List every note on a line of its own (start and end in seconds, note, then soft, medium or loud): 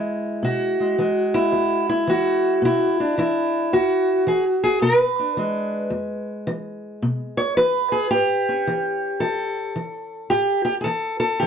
0.00 0.39 E3 medium
0.00 0.80 G#3 soft
0.00 0.98 E4 loud
0.43 0.94 B2 medium
0.43 1.89 F#4 loud
0.80 0.99 G#3 soft
0.98 1.49 E3 medium
0.98 3.76 G#3 medium
1.34 1.88 E4 loud
1.52 2.03 E2 medium
1.89 2.62 E4 medium
2.07 2.58 E3 medium
2.07 2.99 F#4 medium
2.62 3.13 B2 medium
2.62 3.17 E4 medium
3.00 3.73 D4 soft
3.18 3.68 E3 medium
3.18 4.27 E4 medium
3.73 4.23 E2 medium
3.73 4.82 F#4 medium
4.27 4.78 E3 medium
4.27 4.44 G#4 loud
4.64 4.82 G#4 loud
4.82 5.33 B2 medium
4.82 6.47 B4 medium
5.19 5.90 D4 soft
5.37 5.88 E3 medium
5.37 8.12 G#3 soft
5.90 6.42 E2 medium
6.47 6.98 E3 medium
7.02 7.53 B2 medium
7.37 7.56 C#5 loud
7.57 8.08 E3 medium
7.57 8.12 B4 loud
7.92 8.10 G#4 loud
8.10 8.62 A2 medium
8.10 9.76 G4 loud
8.49 10.33 C#4 soft
8.67 9.18 E3 medium
9.20 9.72 E3 medium
9.20 10.83 A4 loud
9.76 10.27 E3 medium
10.30 10.82 A2 medium
10.30 10.63 G4 loud
10.65 10.74 G4 medium
10.81 10.86 G#4 medium
10.81 11.19 A4 medium
10.86 11.37 E3 medium
11.20 11.47 A4 loud
11.40 11.47 E3 medium
11.40 11.47 G4 medium